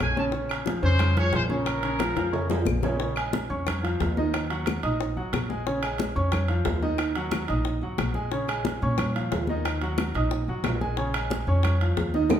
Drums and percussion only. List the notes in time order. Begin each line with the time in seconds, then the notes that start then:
0.00 high conga, high timbale, claves
0.16 high bongo, high conga
0.32 high bongo, high conga
0.49 high conga, high timbale, claves
0.66 high bongo, high conga, high timbale
0.84 high conga
0.99 high bongo, high conga, low conga, high timbale, claves
1.17 high conga, low conga, high timbale
1.33 high bongo, low bongo, high conga, high timbale, low timbale
1.50 high conga
1.66 high bongo, high conga, high timbale, claves
1.83 high bongo, high conga, high timbale
1.99 high bongo, high conga, high timbale, claves
2.17 high bongo, high timbale
2.33 high conga, high timbale
2.50 low bongo, high conga, low timbale
2.65 low bongo, high conga, claves
2.83 low bongo, high conga, low timbale
3.00 high bongo, high conga
3.16 high conga, high timbale, claves
3.33 high bongo, high conga, high timbale
3.51 high conga
3.67 high bongo, high conga, low conga, high timbale, claves
3.84 high conga, high timbale
4.00 high bongo, low bongo, high conga, high timbale, low timbale
4.17 high conga
4.34 high bongo, high conga, high timbale, claves
4.50 high bongo, high conga, high timbale
4.66 high bongo, high conga, high timbale, claves
4.83 high bongo, high conga, high timbale
5.01 high bongo
5.17 high conga
5.33 high bongo, low bongo, high conga, high timbale, claves
5.50 high bongo, high conga
5.67 high bongo, high conga
5.83 high conga, high timbale, claves
5.98 high bongo, high conga, high timbale
6.16 high conga
6.32 high bongo, high conga, low conga, high timbale, claves
6.48 high conga, high timbale
6.65 high bongo, low bongo, high conga, high timbale, low timbale
6.82 high conga
6.98 high bongo, high conga, high timbale, claves
7.15 high bongo, high conga, high timbale
7.31 high bongo, high conga, high timbale, claves
7.48 high bongo, high conga, high timbale
7.64 high bongo, high conga
7.82 high conga
7.98 high bongo, low bongo, high conga, high timbale, claves
8.14 high bongo, high conga
8.31 high bongo, high conga
8.48 high conga, high timbale, claves
8.65 high bongo, high conga, high timbale
8.82 high conga
8.98 high bongo, high conga, low conga, high timbale, claves
9.15 high conga, high timbale
9.32 high bongo, low bongo, high conga, high timbale, low timbale
9.47 high conga
9.65 high bongo, high conga, high timbale, claves
9.82 high bongo, high conga, high timbale
9.98 high bongo, high conga, high timbale, claves
10.14 high bongo, high conga, high timbale
10.31 high bongo, high conga
10.48 high conga
10.64 high bongo, low bongo, high conga, high timbale, low timbale, claves
10.81 high bongo, high conga
10.97 high bongo, high conga
11.14 high conga, high timbale, claves
11.30 high bongo, high conga, high timbale
11.47 high conga
11.63 high bongo, high conga, low conga, high timbale, claves
11.81 high conga, high timbale
11.97 high bongo, low bongo, high conga, high timbale
12.14 high conga
12.30 high bongo, high conga, high timbale, claves